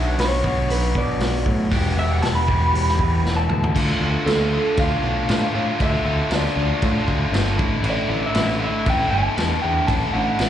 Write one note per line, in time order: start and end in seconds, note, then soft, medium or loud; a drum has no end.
0.00 0.15 B1 loud
0.00 0.41 B2 medium
0.00 0.41 F#3 medium
0.00 0.43 B3 medium
0.00 0.41 D4 medium
0.00 0.41 F#4 medium
0.00 0.16 E5 medium
0.18 0.41 B1 loud
0.18 0.68 C#5 medium
0.18 snare loud
0.18 open hi-hat medium
0.42 0.67 B1 medium
0.42 1.70 B2 medium
0.42 1.70 F#3 medium
0.42 1.69 B3 medium
0.42 1.69 D4 medium
0.42 1.69 F#4 medium
0.42 kick medium
0.69 0.92 B1 medium
0.69 0.95 B4 medium
0.69 open hi-hat medium
0.95 1.18 B2 medium
0.95 1.46 D5 medium
0.95 kick medium
1.19 1.42 B1 medium
1.19 snare loud
1.19 open hi-hat medium
1.46 1.69 A2 medium
1.46 kick medium
1.71 1.94 E1 medium
1.71 2.46 E2 medium
1.71 2.46 B2 medium
1.71 2.46 E3 medium
1.71 2.46 G3 medium
1.71 2.46 B3 loud
1.71 3.74 E4 medium
1.71 2.45 G4 loud
1.71 kick loud
1.71 open hi-hat medium
1.97 2.20 E1 medium
1.97 2.11 E5 loud
2.11 2.22 F#5 medium
2.22 2.46 E1 loud
2.22 2.35 A5 medium
2.22 snare loud
2.22 open hi-hat medium
2.35 3.34 B5 loud
2.47 2.71 E1 loud
2.47 3.75 E2 medium
2.47 3.74 B2 medium
2.47 3.74 E3 medium
2.47 3.74 G3 medium
2.47 3.74 B3 medium
2.47 3.73 G4 medium
2.47 kick medium
2.74 2.97 E1 medium
2.74 open hi-hat medium
2.88 snare soft
2.99 3.22 E2 medium
2.99 kick medium
3.24 3.47 E1 medium
3.24 snare medium
3.36 3.48 A5 medium
3.49 3.73 D2 medium
3.49 3.74 A5 medium
3.49 mid tom medium
3.64 floor tom medium
3.75 3.91 D2 medium
3.75 4.01 D3 medium
3.75 4.02 A3 medium
3.75 4.02 D4 loud
3.75 4.03 F4 loud
3.75 kick loud
3.75 crash loud
3.75 crash medium
4.00 4.16 D2 loud
4.00 4.25 D3 loud
4.00 4.26 A3 medium
4.00 4.26 D4 medium
4.00 4.27 F4 loud
4.26 4.57 D2 loud
4.26 4.51 D3 loud
4.26 4.52 A3 loud
4.26 4.52 D4 loud
4.26 4.52 F4 loud
4.26 4.79 A4 medium
4.26 snare loud
4.26 crash medium
4.52 4.77 D3 medium
4.52 4.78 A3 medium
4.52 4.79 D4 medium
4.52 4.78 F4 medium
4.77 4.93 D2 medium
4.77 5.02 D3 medium
4.77 5.04 A3 medium
4.77 5.04 D4 loud
4.77 5.03 F4 loud
4.77 5.76 F5 loud
4.77 kick loud
4.77 crash medium
5.03 5.18 B1 medium
5.03 5.27 D3 medium
5.03 5.29 A3 medium
5.03 5.29 D4 medium
5.03 5.29 F4 medium
5.29 5.44 A2 loud
5.29 5.53 D3 medium
5.29 5.54 A3 medium
5.29 5.55 D4 loud
5.29 5.54 F4 medium
5.29 snare loud
5.29 crash medium
5.54 5.70 A2 medium
5.54 5.78 D3 medium
5.54 5.79 A3 medium
5.54 5.80 D4 medium
5.54 5.80 F4 loud
5.79 5.95 D2 medium
5.79 6.05 D3 medium
5.79 6.06 A3 loud
5.79 6.07 D4 medium
5.79 6.06 F4 loud
5.79 6.33 E5 loud
5.79 kick loud
5.79 crash medium
6.05 6.21 D2 medium
6.05 6.31 D3 medium
6.05 6.31 A3 medium
6.05 6.31 D4 medium
6.05 6.31 F4 medium
6.30 6.46 D2 medium
6.30 6.56 D3 loud
6.30 6.57 A3 loud
6.30 6.57 D4 loud
6.30 6.57 F4 loud
6.30 snare loud
6.30 crash medium
6.35 7.56 D5 medium
6.46 snare soft
6.56 6.71 D2 medium
6.56 6.81 D3 medium
6.56 6.82 A3 medium
6.56 6.83 D4 loud
6.56 6.82 F4 medium
6.82 6.98 A2 medium
6.82 7.06 D3 medium
6.82 7.07 A3 medium
6.82 7.07 D4 loud
6.82 7.07 F4 loud
6.82 kick loud
6.82 crash medium
7.07 7.24 D2 medium
7.07 7.31 D3 medium
7.07 7.32 A3 medium
7.07 7.33 D4 loud
7.07 7.32 F4 loud
7.07 kick medium
7.32 7.60 G1 medium
7.32 7.56 D3 medium
7.32 7.58 A3 medium
7.32 7.58 D4 medium
7.32 7.57 F4 medium
7.32 snare loud
7.32 crash medium
7.57 7.75 A1 medium
7.57 7.82 A2 loud
7.57 7.82 D3 loud
7.57 7.83 A3 loud
7.57 7.83 D4 loud
7.57 7.83 E4 loud
7.57 kick loud
7.82 7.98 A1 medium
7.82 8.08 A2 medium
7.82 8.08 D3 medium
7.82 8.09 A3 loud
7.82 8.09 D4 loud
7.82 8.10 E4 loud
7.82 crash medium
7.90 8.26 D5 medium
8.08 8.24 A1 loud
8.08 8.34 A2 medium
8.08 8.33 D3 medium
8.08 8.34 A3 medium
8.08 8.35 D4 loud
8.08 8.35 E4 medium
8.26 8.63 E5 loud
8.34 8.66 A1 loud
8.34 8.60 A2 loud
8.34 8.60 D3 loud
8.34 8.61 A3 loud
8.34 8.61 D4 loud
8.34 8.62 E4 loud
8.34 snare loud
8.34 crash medium
8.49 snare soft
8.61 8.84 A2 medium
8.61 8.85 D3 medium
8.61 8.85 A3 medium
8.61 8.86 D4 medium
8.61 8.86 E4 loud
8.61 8.88 E5 medium
8.86 9.02 A1 medium
8.86 9.11 A2 medium
8.86 9.11 D3 medium
8.86 9.12 A3 medium
8.86 9.12 D4 loud
8.86 9.13 E4 medium
8.86 kick loud
8.86 crash medium
8.90 9.10 G5 loud
9.11 9.27 G1 medium
9.11 9.36 A2 medium
9.11 9.36 D3 loud
9.11 9.37 A3 loud
9.11 9.37 D4 medium
9.11 9.39 E4 loud
9.11 9.61 A5 loud
9.37 9.53 E2 medium
9.37 9.61 A2 medium
9.37 9.61 D3 medium
9.37 9.61 A3 loud
9.37 9.62 D4 medium
9.37 9.63 E4 loud
9.37 snare loud
9.37 crash medium
9.62 9.79 E2 medium
9.62 9.86 A2 medium
9.62 9.87 D3 medium
9.62 9.87 A3 loud
9.62 9.88 D4 medium
9.62 9.89 E4 medium
9.62 9.87 G5 medium
9.87 10.03 A1 medium
9.87 10.12 A2 loud
9.87 10.13 D3 medium
9.87 10.13 A3 loud
9.87 10.13 D4 loud
9.87 10.14 E4 loud
9.87 10.11 A5 loud
9.87 kick loud
9.87 crash medium
10.13 10.30 A1 medium
10.13 10.37 A2 medium
10.13 10.38 D3 medium
10.13 10.38 A3 medium
10.13 10.38 D4 medium
10.13 10.40 E4 loud
10.13 10.49 F#5 loud
10.39 10.49 A1 loud
10.39 10.49 A2 medium
10.39 10.49 D3 loud
10.39 10.49 A3 loud
10.39 10.49 D4 loud
10.39 10.49 E4 loud
10.39 snare loud
10.39 crash medium